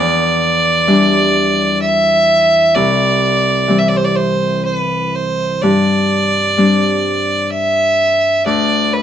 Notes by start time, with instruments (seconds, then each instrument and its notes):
Already playing: harp E2 C4, fiddle D5
0.87 harp E3 G3 D4
1.82 fiddle E5
2.75 harp C2, fiddle D5
3.67 harp E3 G3 C4
3.79 fiddle E5
3.89 fiddle D5
3.97 fiddle C5
4.05 fiddle D5
4.16 fiddle C5
4.65 fiddle B4
5.15 fiddle C5
5.62 harp G2, fiddle D5
6.58 harp G3 C4 D4
7.50 fiddle E5
8.46 harp D2, fiddle D5
8.93 fiddle B4